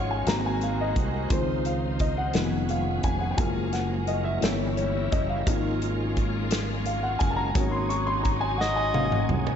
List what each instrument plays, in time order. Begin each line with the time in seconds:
Already playing: fingered electric bass G#1, string section C#3 F3 G#3 F4, grand piano F3 G#3 C#4 D#5 F5 F#5, tonewheel organ G#3 C#4 F4 C#5
0.11 grand piano G#5
0.26 fingered electric bass G#1, grand piano F#3 A#3 C4 A#5, tonewheel organ G#3 C4 F#4 A#4, string section G#3 A#3 F#4 C5, snare, closed hi-hat
0.46 grand piano G#5
0.61 grand piano F5, closed hi-hat
0.81 grand piano D#5
0.96 fingered electric bass C2, kick, closed hi-hat
1.30 fingered electric bass C#2, tonewheel organ C#3 F3 D#4 C5, grand piano D#3 F3 C4 C5, string section F3 D#4, kick, closed hi-hat
1.65 grand piano F5, closed hi-hat
1.99 grand piano D#5, kick, closed hi-hat
2.18 grand piano F#5
2.33 fingered electric bass F1, grand piano D#3 F3 B3, string section G#3 B3 G#4, tonewheel organ G#3 C#4 E4 B4, snare, closed hi-hat
2.41 tonewheel organ F3
2.69 grand piano F5, closed hi-hat
3.03 fingered electric bass F1, grand piano G#5, kick, closed hi-hat
3.20 grand piano F#5
3.31 grand piano G5
3.37 fingered electric bass F#1, grand piano F3 G#3 A#3 G#5, string section F3 A#3, tonewheel organ F3 C#4 A#4, kick, closed hi-hat
3.73 grand piano F#5, snare, closed hi-hat
4.07 grand piano D#5, closed hi-hat
4.24 grand piano E5
4.41 fingered electric bass G1, grand piano E3 A#3 C#4, string section G3 E4, tonewheel organ G3 C#4 E4 A4, snare, closed hi-hat
4.49 tonewheel organ A#4
4.77 grand piano C#5, closed hi-hat
5.12 fingered electric bass F#1, grand piano D#5, kick, closed hi-hat
5.30 grand piano F5
5.45 fingered electric bass G#1, grand piano F3 A#3 D#4, tonewheel organ G#3 C#4 F4 A#4, string section G#3 A#3 F4, kick, closed hi-hat
5.82 closed hi-hat
6.17 kick, closed hi-hat
6.51 snare, closed hi-hat
6.85 grand piano F5, closed hi-hat
7.03 grand piano F#5
7.19 fingered electric bass F#1, grand piano G#5, kick, closed hi-hat
7.31 grand piano A5
7.36 grand piano A#5
7.54 fingered electric bass G#1, grand piano F#3 A#3 C#4, string section F#3 D#4, tonewheel organ F#3 C#4 D#4 G#4, kick, closed hi-hat
7.71 grand piano C6
7.89 grand piano C#6, closed hi-hat
8.07 grand piano C6
8.23 grand piano A#5, kick, closed hi-hat
8.41 grand piano G#5
8.58 soprano saxophone D#5, grand piano F#5, snare
8.76 grand piano G#5
8.94 grand piano F#3 A#3 C#4 F5, high tom
9.06 grand piano F5
9.11 grand piano D#5, mid tom
9.29 fingered electric bass C2, mid tom
9.47 floor tom